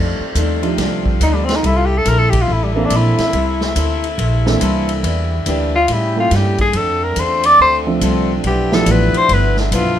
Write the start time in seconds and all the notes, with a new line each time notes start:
Already playing: F2 C3 D#3 G3 A3 D4 F4 A4
0.20 muted upright bass stroke
0.35 D#2 F2 D#3 A3 D4, kick, hi-hat pedal, ride
0.63 F3 A3 D4 D#4 G4, ride
0.77 C2 F2 D#3 A3 D4, kick, snare, ride
1.06 kick
1.20 D2 F2 D#3 A3 D4 D#4, kick, hi-hat pedal, ride
1.34 G3
1.45 C4, ride
1.49 snare
1.55 D#4
1.62 C2 C3 A#3 E4 A4, kick, ride
1.76 F4
1.86 G4
1.98 A4
2.04 A#1 C3 A#3 E4 A4 A#4, kick, hi-hat pedal, ride
2.19 A4
2.30 G4, kick, ride
2.42 F4
2.47 A1 C3 A#3 E4 A4, kick
2.52 E4
2.64 G3
2.73 E3 A#3 C4 D4 A4
2.85 D4
2.90 A#1 C3 A#3 E4 A4, kick, hi-hat pedal, ride
2.96 E4
3.18 muted upright bass stroke, snare, ride
3.32 C2 C3 A#3 E4 A4, kick, ride
3.61 snare
3.75 D2 C3 A#3 E4 A4, kick, hi-hat pedal, ride
4.04 ride
4.17 A#1 C3 A#3 E4 A4, kick, ride
4.46 E3 A#3 C4 D4 A4, snare
4.60 C2 C3 A#3 E4 A4, kick, hi-hat pedal, ride
4.89 ride
5.03 E2 D3 E3 G3 A#3 D4 G4, kick, ride
5.46 D2 E3 A#3 D4 G4, kick, hi-hat pedal, ride
5.76 F4
5.88 A2 C#3 G3 A#3 C#4 G4, kick, ride
5.92 E4
6.16 G3 A#3 C#4 E4 F4 A4
6.31 G2 A2 G3 A#3 C#4, kick, snare, hi-hat pedal, ride
6.36 G4
6.58 G#4, kick, ride
6.73 F2 D3 A3 C4 D4 F4 A4, kick, ride
7.04 A#4
7.16 E2 D3 C4 F4 A4 C5, kick, hi-hat pedal, ride
7.43 D5, ride
7.59 D2 D3 C4 F4 A4 C5, kick
7.87 F3 A3 C4 D4 A4
8.01 C2 D3 C4 F4 A4, kick, hi-hat pedal, ride
8.44 B1 G2 F3 A3 B3 E4 G4, kick, ride
8.48 E4
8.72 F3 A3 B3 E4 G4 A4, snare
8.86 A1 G2 F3 B3 E4, kick, hi-hat pedal, ride
8.91 B4
9.14 C5, ride
9.29 G1 G2 F3 B3 E4, kick, ride
9.33 B4
9.57 D4, snare
9.71 B1 G2 F3 B3 E4 F4, kick, hi-hat pedal, ride